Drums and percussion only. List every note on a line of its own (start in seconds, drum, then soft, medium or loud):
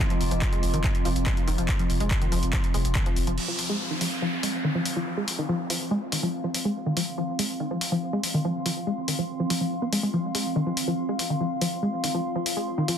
0.10 closed hi-hat medium
0.21 open hi-hat loud
0.31 closed hi-hat medium
0.42 kick loud
0.42 clap loud
0.42 closed hi-hat medium
0.53 closed hi-hat medium
0.63 open hi-hat medium
0.74 closed hi-hat medium
0.84 kick loud
0.84 clap loud
0.84 closed hi-hat medium
0.95 closed hi-hat medium
1.05 open hi-hat loud
1.16 closed hi-hat medium
1.26 kick loud
1.26 clap loud
1.26 closed hi-hat medium
1.37 closed hi-hat medium
1.48 open hi-hat medium
1.58 closed hi-hat medium
1.69 kick loud
1.69 clap loud
1.69 closed hi-hat medium
1.79 closed hi-hat medium
1.90 open hi-hat loud
2.00 closed hi-hat medium
2.11 kick loud
2.11 clap loud
2.11 closed hi-hat medium
2.22 closed hi-hat medium
2.32 open hi-hat medium
2.43 closed hi-hat medium
2.53 kick loud
2.53 clap loud
2.53 closed hi-hat medium
2.64 closed hi-hat medium
2.74 open hi-hat loud
2.85 closed hi-hat medium
2.95 kick loud
2.95 clap loud
2.95 closed hi-hat medium
3.06 closed hi-hat medium
3.16 open hi-hat medium
3.27 closed hi-hat medium
3.38 crash medium
3.59 open hi-hat loud
4.01 open hi-hat medium
4.43 open hi-hat loud
4.86 open hi-hat medium
5.28 open hi-hat loud
5.70 open hi-hat medium
6.12 open hi-hat loud
6.54 open hi-hat medium
6.97 open hi-hat loud
7.39 open hi-hat medium
7.81 open hi-hat loud
8.23 open hi-hat medium
8.66 open hi-hat loud
9.08 open hi-hat medium
9.50 open hi-hat loud
9.93 open hi-hat medium
10.35 open hi-hat loud
10.77 open hi-hat medium
11.19 open hi-hat loud
11.61 open hi-hat medium
12.04 open hi-hat loud
12.46 open hi-hat medium
12.88 open hi-hat loud